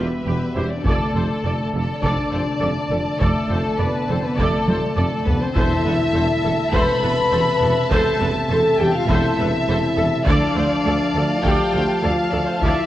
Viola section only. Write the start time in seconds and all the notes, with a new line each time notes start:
0.26 G4
0.56 E4 G4
0.86 A4 D5
1.15 A4 C5
1.45 A4 D5
1.74 A4
2.02 A4 D5
2.32 A4 C5
2.61 A4 D5
2.91 A4
3.20 A4 D5
3.50 A4 C5
3.80 A4 D5
4.09 A4
4.38 A4 D5
4.68 A4 C5
4.96 A4 D5
5.26 A4
5.56 A4 C5
5.86 A4 B4
6.14 A4 C5
6.43 A4
6.73 A4 C5
7.02 A4 B4
7.32 A4 C5
7.62 A4
7.91 A4 C5
8.20 A4 B4
8.50 A4 C5
8.79 A4
9.09 A4 C5
9.39 A4 B4
9.68 A4 C5
9.97 A4
10.26 A4 D5
10.56 A4 C5
10.86 A4 D5
11.16 A4
11.44 A4 D5
11.73 A4 C5
12.03 A4 D5
12.33 A4
12.62 A4 D5